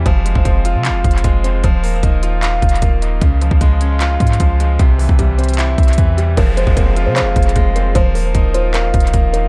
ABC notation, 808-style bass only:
X:1
M:4/4
L:1/16
Q:1/4=152
K:Fm
V:1 name="808-style bass" clef=bass
F,,,3 F,,,4 C,3/2 F,,,3/2 F,,,2 F,,,4 | E,,,4 E,,,6 E,,,2 E,,,4 | D,,3 D,,6- D,, A,,2 D,,4 | C,,3 C,,6- C,, C,,2 =E,,4 |
F,,,3 F,,,4 C,3/2 F,,,3/2 F,,,2 F,,,4 | E,,,4 E,,,6 E,,,2 E,,,4 |]